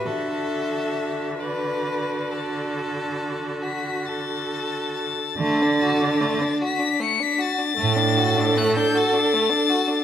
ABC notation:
X:1
M:12/8
L:1/16
Q:3/8=48
K:D
V:1 name="Violin"
e6 d8- d2 b'2 a'4 a'2- | a'6 b'2 c'' b' a'6 f' g' a'6 |]
V:2 name="Viola"
F6 F16- F z | z12 A12 |]
V:3 name="Violin"
A6 B4 A6 F2 A6 | A, D F D A, D F D A, D F D A, D F D A, D F D A, D F D |]
V:4 name="Cello" clef=bass
D,16- D,6- D, z | D,6 z6 A,,6 z6 |]